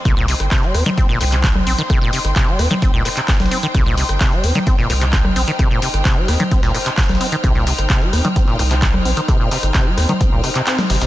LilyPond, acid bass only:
\new Staff \with { instrumentName = "Acid bass" } { \clef bass \time 4/4 \key c \minor \tempo 4 = 130 c16 bes,16 c16 r16 c16 g16 c'16 ees16 c'16 bes,16 bes,16 c16 c16 r16 c'16 ees16 | c16 bes,16 c16 r16 c16 g16 c'16 ees16 c'16 bes,16 bes,16 c16 c16 r16 c'16 ees16 | c16 bes,16 c16 r16 c16 g16 c'16 ees16 c'16 bes,16 bes,16 c16 c16 r16 c'16 ees16 | c16 bes,16 c16 r16 c16 g16 c'16 ees16 c'16 bes,16 bes,16 c16 c16 r16 c'16 ees16 |
c16 bes,16 c16 r16 c16 g16 c'16 ees16 c'16 bes,16 bes,16 c16 c16 r16 c'16 ees16 | c16 bes,16 c16 r16 c16 g16 c'16 ees16 c'16 bes,16 c16 c16 c'16 g16 c16 c16 | }